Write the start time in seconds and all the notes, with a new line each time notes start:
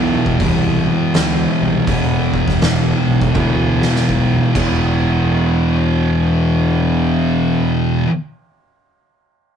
Already playing: B1 E2 B2 E3
0.26 kick
0.40 C2 E2 B2 E3, kick, open hi-hat
1.14 D2, snare, open hi-hat
1.61 C2
1.87 E1 E2 B2 E3, kick, open hi-hat
2.34 kick
2.48 kick, snare
2.61 E1, snare, open hi-hat
3.07 B1
3.21 kick
3.35 D2 E2 B2, kick, high tom
3.40 E3
3.82 snare
3.95 snare
4.09 B1, kick
4.55 E1 E2 B2, kick, crash
4.60 E3